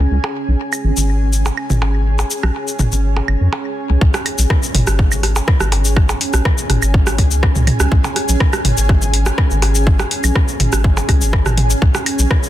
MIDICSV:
0, 0, Header, 1, 5, 480
1, 0, Start_track
1, 0, Tempo, 487805
1, 109, Time_signature, 4, 2, 24, 8
1, 12293, End_track
2, 0, Start_track
2, 0, Title_t, "Ambient pad"
2, 0, Program_c, 0, 92
2, 0, Note_on_c, 0, 61, 76
2, 0, Note_on_c, 0, 68, 80
2, 0, Note_on_c, 0, 80, 77
2, 3949, Note_off_c, 0, 80, 0
2, 5148, Note_on_c, 0, 80, 77
2, 12293, Note_off_c, 0, 61, 0
2, 12293, Note_off_c, 0, 68, 0
2, 12293, Note_off_c, 0, 80, 0
2, 12293, End_track
3, 0, Start_track
3, 0, Title_t, "Analog synth bass"
3, 0, Program_c, 1, 38
3, 109, Note_on_c, 1, 37, 92
3, 186, Note_off_c, 1, 37, 0
3, 475, Note_on_c, 1, 35, 78
3, 545, Note_off_c, 1, 35, 0
3, 829, Note_on_c, 1, 32, 97
3, 906, Note_off_c, 1, 32, 0
3, 955, Note_on_c, 1, 32, 84
3, 1478, Note_off_c, 1, 32, 0
3, 1675, Note_on_c, 1, 32, 88
3, 2198, Note_off_c, 1, 32, 0
3, 2395, Note_on_c, 1, 35, 82
3, 2465, Note_off_c, 1, 35, 0
3, 2749, Note_on_c, 1, 32, 96
3, 2826, Note_off_c, 1, 32, 0
3, 2874, Note_on_c, 1, 32, 90
3, 3158, Note_off_c, 1, 32, 0
3, 3229, Note_on_c, 1, 32, 79
3, 3306, Note_off_c, 1, 32, 0
3, 3354, Note_on_c, 1, 42, 78
3, 3425, Note_off_c, 1, 42, 0
3, 3834, Note_on_c, 1, 37, 78
3, 3905, Note_off_c, 1, 37, 0
3, 3949, Note_on_c, 1, 37, 96
3, 4026, Note_off_c, 1, 37, 0
3, 4314, Note_on_c, 1, 35, 76
3, 4385, Note_off_c, 1, 35, 0
3, 4670, Note_on_c, 1, 32, 99
3, 4746, Note_off_c, 1, 32, 0
3, 4794, Note_on_c, 1, 32, 93
3, 5318, Note_off_c, 1, 32, 0
3, 5515, Note_on_c, 1, 32, 91
3, 6038, Note_off_c, 1, 32, 0
3, 6235, Note_on_c, 1, 35, 82
3, 6305, Note_off_c, 1, 35, 0
3, 6590, Note_on_c, 1, 32, 99
3, 6666, Note_off_c, 1, 32, 0
3, 6715, Note_on_c, 1, 32, 93
3, 7070, Note_on_c, 1, 37, 102
3, 7085, Note_off_c, 1, 32, 0
3, 7357, Note_off_c, 1, 37, 0
3, 7435, Note_on_c, 1, 37, 89
3, 7577, Note_off_c, 1, 37, 0
3, 7675, Note_on_c, 1, 37, 110
3, 7745, Note_off_c, 1, 37, 0
3, 7790, Note_on_c, 1, 37, 100
3, 7866, Note_off_c, 1, 37, 0
3, 8155, Note_on_c, 1, 35, 86
3, 8225, Note_off_c, 1, 35, 0
3, 8510, Note_on_c, 1, 32, 99
3, 8586, Note_off_c, 1, 32, 0
3, 8635, Note_on_c, 1, 32, 96
3, 9158, Note_off_c, 1, 32, 0
3, 9355, Note_on_c, 1, 32, 92
3, 9878, Note_off_c, 1, 32, 0
3, 10075, Note_on_c, 1, 35, 79
3, 10145, Note_off_c, 1, 35, 0
3, 10430, Note_on_c, 1, 32, 98
3, 10506, Note_off_c, 1, 32, 0
3, 10555, Note_on_c, 1, 32, 90
3, 10838, Note_off_c, 1, 32, 0
3, 10910, Note_on_c, 1, 37, 100
3, 11035, Note_on_c, 1, 32, 101
3, 11050, Note_off_c, 1, 37, 0
3, 11558, Note_off_c, 1, 32, 0
3, 11630, Note_on_c, 1, 37, 91
3, 11706, Note_off_c, 1, 37, 0
3, 11995, Note_on_c, 1, 35, 77
3, 12065, Note_off_c, 1, 35, 0
3, 12293, End_track
4, 0, Start_track
4, 0, Title_t, "Percussion blips"
4, 235, Note_on_c, 9, 77, 66
4, 333, Note_off_c, 9, 77, 0
4, 1434, Note_on_c, 9, 77, 64
4, 1533, Note_off_c, 9, 77, 0
4, 1789, Note_on_c, 9, 77, 49
4, 1888, Note_off_c, 9, 77, 0
4, 2154, Note_on_c, 9, 77, 67
4, 2253, Note_off_c, 9, 77, 0
4, 3115, Note_on_c, 9, 77, 51
4, 3213, Note_off_c, 9, 77, 0
4, 3469, Note_on_c, 9, 77, 64
4, 3567, Note_off_c, 9, 77, 0
4, 4074, Note_on_c, 9, 77, 81
4, 4173, Note_off_c, 9, 77, 0
4, 5275, Note_on_c, 9, 77, 79
4, 5373, Note_off_c, 9, 77, 0
4, 5630, Note_on_c, 9, 77, 56
4, 5728, Note_off_c, 9, 77, 0
4, 5995, Note_on_c, 9, 77, 81
4, 6093, Note_off_c, 9, 77, 0
4, 6955, Note_on_c, 9, 77, 57
4, 7054, Note_off_c, 9, 77, 0
4, 7310, Note_on_c, 9, 77, 78
4, 7408, Note_off_c, 9, 77, 0
4, 7915, Note_on_c, 9, 77, 84
4, 8013, Note_off_c, 9, 77, 0
4, 9115, Note_on_c, 9, 77, 82
4, 9213, Note_off_c, 9, 77, 0
4, 9470, Note_on_c, 9, 77, 60
4, 9568, Note_off_c, 9, 77, 0
4, 9835, Note_on_c, 9, 77, 80
4, 9933, Note_off_c, 9, 77, 0
4, 10795, Note_on_c, 9, 77, 60
4, 10894, Note_off_c, 9, 77, 0
4, 11150, Note_on_c, 9, 77, 80
4, 11248, Note_off_c, 9, 77, 0
4, 11755, Note_on_c, 9, 77, 79
4, 11854, Note_off_c, 9, 77, 0
4, 12293, End_track
5, 0, Start_track
5, 0, Title_t, "Drums"
5, 714, Note_on_c, 9, 75, 60
5, 715, Note_on_c, 9, 69, 29
5, 813, Note_off_c, 9, 69, 0
5, 813, Note_off_c, 9, 75, 0
5, 955, Note_on_c, 9, 69, 42
5, 1053, Note_off_c, 9, 69, 0
5, 1310, Note_on_c, 9, 69, 40
5, 1408, Note_off_c, 9, 69, 0
5, 1435, Note_on_c, 9, 69, 30
5, 1534, Note_off_c, 9, 69, 0
5, 1549, Note_on_c, 9, 75, 60
5, 1648, Note_off_c, 9, 75, 0
5, 1674, Note_on_c, 9, 47, 72
5, 1675, Note_on_c, 9, 69, 28
5, 1773, Note_off_c, 9, 47, 0
5, 1773, Note_off_c, 9, 69, 0
5, 2155, Note_on_c, 9, 69, 29
5, 2253, Note_off_c, 9, 69, 0
5, 2269, Note_on_c, 9, 69, 43
5, 2368, Note_off_c, 9, 69, 0
5, 2394, Note_on_c, 9, 37, 58
5, 2394, Note_on_c, 9, 75, 60
5, 2493, Note_off_c, 9, 37, 0
5, 2493, Note_off_c, 9, 75, 0
5, 2635, Note_on_c, 9, 69, 29
5, 2733, Note_off_c, 9, 69, 0
5, 2749, Note_on_c, 9, 47, 84
5, 2749, Note_on_c, 9, 69, 28
5, 2847, Note_off_c, 9, 47, 0
5, 2848, Note_off_c, 9, 69, 0
5, 2875, Note_on_c, 9, 69, 42
5, 2973, Note_off_c, 9, 69, 0
5, 3229, Note_on_c, 9, 75, 65
5, 3327, Note_off_c, 9, 75, 0
5, 3949, Note_on_c, 9, 36, 112
5, 4048, Note_off_c, 9, 36, 0
5, 4074, Note_on_c, 9, 37, 80
5, 4075, Note_on_c, 9, 69, 30
5, 4173, Note_off_c, 9, 37, 0
5, 4173, Note_off_c, 9, 69, 0
5, 4189, Note_on_c, 9, 75, 59
5, 4190, Note_on_c, 9, 46, 87
5, 4288, Note_off_c, 9, 46, 0
5, 4288, Note_off_c, 9, 75, 0
5, 4315, Note_on_c, 9, 69, 54
5, 4413, Note_off_c, 9, 69, 0
5, 4429, Note_on_c, 9, 36, 115
5, 4429, Note_on_c, 9, 37, 39
5, 4430, Note_off_c, 9, 37, 0
5, 4430, Note_on_c, 9, 37, 95
5, 4528, Note_off_c, 9, 36, 0
5, 4528, Note_off_c, 9, 37, 0
5, 4555, Note_on_c, 9, 69, 40
5, 4653, Note_off_c, 9, 69, 0
5, 4669, Note_on_c, 9, 46, 98
5, 4670, Note_on_c, 9, 47, 86
5, 4768, Note_off_c, 9, 46, 0
5, 4768, Note_off_c, 9, 47, 0
5, 4794, Note_on_c, 9, 37, 82
5, 4795, Note_on_c, 9, 69, 54
5, 4893, Note_off_c, 9, 37, 0
5, 4893, Note_off_c, 9, 69, 0
5, 4909, Note_on_c, 9, 36, 107
5, 5008, Note_off_c, 9, 36, 0
5, 5035, Note_on_c, 9, 69, 43
5, 5035, Note_on_c, 9, 75, 63
5, 5133, Note_off_c, 9, 69, 0
5, 5133, Note_off_c, 9, 75, 0
5, 5149, Note_on_c, 9, 37, 42
5, 5150, Note_on_c, 9, 46, 90
5, 5248, Note_off_c, 9, 37, 0
5, 5248, Note_off_c, 9, 46, 0
5, 5275, Note_on_c, 9, 69, 57
5, 5373, Note_off_c, 9, 69, 0
5, 5389, Note_on_c, 9, 36, 116
5, 5390, Note_on_c, 9, 37, 94
5, 5488, Note_off_c, 9, 36, 0
5, 5488, Note_off_c, 9, 37, 0
5, 5515, Note_on_c, 9, 37, 80
5, 5515, Note_on_c, 9, 69, 29
5, 5613, Note_off_c, 9, 37, 0
5, 5613, Note_off_c, 9, 69, 0
5, 5629, Note_on_c, 9, 46, 94
5, 5728, Note_off_c, 9, 46, 0
5, 5755, Note_on_c, 9, 69, 51
5, 5853, Note_off_c, 9, 69, 0
5, 5869, Note_on_c, 9, 36, 121
5, 5870, Note_on_c, 9, 37, 39
5, 5870, Note_on_c, 9, 75, 64
5, 5968, Note_off_c, 9, 36, 0
5, 5968, Note_off_c, 9, 37, 0
5, 5968, Note_off_c, 9, 75, 0
5, 5995, Note_on_c, 9, 69, 30
5, 6093, Note_off_c, 9, 69, 0
5, 6110, Note_on_c, 9, 46, 92
5, 6208, Note_off_c, 9, 46, 0
5, 6235, Note_on_c, 9, 37, 75
5, 6235, Note_on_c, 9, 69, 51
5, 6333, Note_off_c, 9, 37, 0
5, 6333, Note_off_c, 9, 69, 0
5, 6350, Note_on_c, 9, 36, 122
5, 6350, Note_on_c, 9, 37, 94
5, 6448, Note_off_c, 9, 36, 0
5, 6448, Note_off_c, 9, 37, 0
5, 6475, Note_on_c, 9, 69, 42
5, 6574, Note_off_c, 9, 69, 0
5, 6589, Note_on_c, 9, 46, 95
5, 6590, Note_on_c, 9, 37, 41
5, 6590, Note_on_c, 9, 47, 82
5, 6688, Note_off_c, 9, 37, 0
5, 6688, Note_off_c, 9, 46, 0
5, 6688, Note_off_c, 9, 47, 0
5, 6715, Note_on_c, 9, 69, 53
5, 6715, Note_on_c, 9, 75, 66
5, 6814, Note_off_c, 9, 69, 0
5, 6814, Note_off_c, 9, 75, 0
5, 6830, Note_on_c, 9, 36, 118
5, 6928, Note_off_c, 9, 36, 0
5, 6955, Note_on_c, 9, 37, 84
5, 6955, Note_on_c, 9, 69, 43
5, 7053, Note_off_c, 9, 69, 0
5, 7054, Note_off_c, 9, 37, 0
5, 7070, Note_on_c, 9, 36, 62
5, 7070, Note_on_c, 9, 46, 100
5, 7168, Note_off_c, 9, 36, 0
5, 7168, Note_off_c, 9, 46, 0
5, 7195, Note_on_c, 9, 69, 53
5, 7293, Note_off_c, 9, 69, 0
5, 7310, Note_on_c, 9, 36, 118
5, 7310, Note_on_c, 9, 37, 40
5, 7408, Note_off_c, 9, 36, 0
5, 7408, Note_off_c, 9, 37, 0
5, 7435, Note_on_c, 9, 47, 83
5, 7435, Note_on_c, 9, 69, 29
5, 7533, Note_off_c, 9, 47, 0
5, 7534, Note_off_c, 9, 69, 0
5, 7550, Note_on_c, 9, 46, 94
5, 7550, Note_on_c, 9, 47, 97
5, 7550, Note_on_c, 9, 75, 62
5, 7648, Note_off_c, 9, 46, 0
5, 7648, Note_off_c, 9, 47, 0
5, 7648, Note_off_c, 9, 75, 0
5, 7675, Note_on_c, 9, 37, 83
5, 7675, Note_on_c, 9, 69, 53
5, 7773, Note_off_c, 9, 37, 0
5, 7773, Note_off_c, 9, 69, 0
5, 7790, Note_on_c, 9, 36, 122
5, 7888, Note_off_c, 9, 36, 0
5, 7915, Note_on_c, 9, 69, 29
5, 8014, Note_off_c, 9, 69, 0
5, 8030, Note_on_c, 9, 37, 37
5, 8030, Note_on_c, 9, 46, 99
5, 8128, Note_off_c, 9, 37, 0
5, 8128, Note_off_c, 9, 46, 0
5, 8155, Note_on_c, 9, 69, 48
5, 8253, Note_off_c, 9, 69, 0
5, 8269, Note_on_c, 9, 37, 91
5, 8270, Note_on_c, 9, 36, 122
5, 8368, Note_off_c, 9, 36, 0
5, 8368, Note_off_c, 9, 37, 0
5, 8395, Note_on_c, 9, 37, 79
5, 8395, Note_on_c, 9, 69, 42
5, 8395, Note_on_c, 9, 75, 62
5, 8493, Note_off_c, 9, 37, 0
5, 8493, Note_off_c, 9, 69, 0
5, 8493, Note_off_c, 9, 75, 0
5, 8509, Note_on_c, 9, 47, 80
5, 8510, Note_on_c, 9, 46, 100
5, 8608, Note_off_c, 9, 46, 0
5, 8608, Note_off_c, 9, 47, 0
5, 8635, Note_on_c, 9, 69, 51
5, 8733, Note_off_c, 9, 69, 0
5, 8749, Note_on_c, 9, 37, 36
5, 8750, Note_on_c, 9, 36, 118
5, 8848, Note_off_c, 9, 36, 0
5, 8848, Note_off_c, 9, 37, 0
5, 8875, Note_on_c, 9, 69, 41
5, 8973, Note_off_c, 9, 69, 0
5, 8989, Note_on_c, 9, 46, 94
5, 9088, Note_off_c, 9, 46, 0
5, 9114, Note_on_c, 9, 69, 54
5, 9115, Note_on_c, 9, 37, 76
5, 9213, Note_off_c, 9, 37, 0
5, 9213, Note_off_c, 9, 69, 0
5, 9229, Note_on_c, 9, 37, 90
5, 9230, Note_on_c, 9, 36, 119
5, 9230, Note_on_c, 9, 75, 60
5, 9328, Note_off_c, 9, 36, 0
5, 9328, Note_off_c, 9, 37, 0
5, 9328, Note_off_c, 9, 75, 0
5, 9355, Note_on_c, 9, 69, 28
5, 9453, Note_off_c, 9, 69, 0
5, 9469, Note_on_c, 9, 46, 101
5, 9470, Note_on_c, 9, 37, 36
5, 9568, Note_off_c, 9, 37, 0
5, 9568, Note_off_c, 9, 46, 0
5, 9594, Note_on_c, 9, 69, 52
5, 9693, Note_off_c, 9, 69, 0
5, 9710, Note_on_c, 9, 36, 120
5, 9808, Note_off_c, 9, 36, 0
5, 9835, Note_on_c, 9, 37, 74
5, 9835, Note_on_c, 9, 69, 28
5, 9933, Note_off_c, 9, 37, 0
5, 9933, Note_off_c, 9, 69, 0
5, 9949, Note_on_c, 9, 46, 93
5, 10048, Note_off_c, 9, 46, 0
5, 10075, Note_on_c, 9, 69, 48
5, 10075, Note_on_c, 9, 75, 60
5, 10173, Note_off_c, 9, 69, 0
5, 10173, Note_off_c, 9, 75, 0
5, 10190, Note_on_c, 9, 36, 116
5, 10190, Note_on_c, 9, 37, 34
5, 10288, Note_off_c, 9, 36, 0
5, 10289, Note_off_c, 9, 37, 0
5, 10315, Note_on_c, 9, 69, 39
5, 10413, Note_off_c, 9, 69, 0
5, 10430, Note_on_c, 9, 46, 97
5, 10430, Note_on_c, 9, 47, 80
5, 10528, Note_off_c, 9, 46, 0
5, 10528, Note_off_c, 9, 47, 0
5, 10555, Note_on_c, 9, 37, 78
5, 10555, Note_on_c, 9, 69, 50
5, 10654, Note_off_c, 9, 37, 0
5, 10654, Note_off_c, 9, 69, 0
5, 10670, Note_on_c, 9, 36, 111
5, 10768, Note_off_c, 9, 36, 0
5, 10795, Note_on_c, 9, 69, 39
5, 10894, Note_off_c, 9, 69, 0
5, 10910, Note_on_c, 9, 36, 61
5, 10910, Note_on_c, 9, 37, 38
5, 10910, Note_on_c, 9, 46, 99
5, 10910, Note_on_c, 9, 75, 64
5, 11008, Note_off_c, 9, 36, 0
5, 11008, Note_off_c, 9, 46, 0
5, 11009, Note_off_c, 9, 37, 0
5, 11009, Note_off_c, 9, 75, 0
5, 11035, Note_on_c, 9, 69, 50
5, 11133, Note_off_c, 9, 69, 0
5, 11150, Note_on_c, 9, 36, 113
5, 11150, Note_on_c, 9, 37, 89
5, 11248, Note_off_c, 9, 36, 0
5, 11248, Note_off_c, 9, 37, 0
5, 11275, Note_on_c, 9, 69, 27
5, 11276, Note_on_c, 9, 37, 76
5, 11276, Note_on_c, 9, 47, 74
5, 11374, Note_off_c, 9, 37, 0
5, 11374, Note_off_c, 9, 47, 0
5, 11374, Note_off_c, 9, 69, 0
5, 11390, Note_on_c, 9, 46, 99
5, 11390, Note_on_c, 9, 47, 88
5, 11488, Note_off_c, 9, 46, 0
5, 11489, Note_off_c, 9, 47, 0
5, 11515, Note_on_c, 9, 69, 48
5, 11614, Note_off_c, 9, 69, 0
5, 11630, Note_on_c, 9, 36, 115
5, 11728, Note_off_c, 9, 36, 0
5, 11755, Note_on_c, 9, 37, 76
5, 11755, Note_on_c, 9, 69, 29
5, 11854, Note_off_c, 9, 37, 0
5, 11854, Note_off_c, 9, 69, 0
5, 11870, Note_on_c, 9, 46, 93
5, 11870, Note_on_c, 9, 75, 63
5, 11968, Note_off_c, 9, 46, 0
5, 11968, Note_off_c, 9, 75, 0
5, 11995, Note_on_c, 9, 69, 50
5, 12093, Note_off_c, 9, 69, 0
5, 12109, Note_on_c, 9, 37, 93
5, 12110, Note_off_c, 9, 37, 0
5, 12110, Note_on_c, 9, 36, 110
5, 12110, Note_on_c, 9, 37, 38
5, 12208, Note_off_c, 9, 36, 0
5, 12208, Note_off_c, 9, 37, 0
5, 12235, Note_on_c, 9, 69, 41
5, 12293, Note_off_c, 9, 69, 0
5, 12293, End_track
0, 0, End_of_file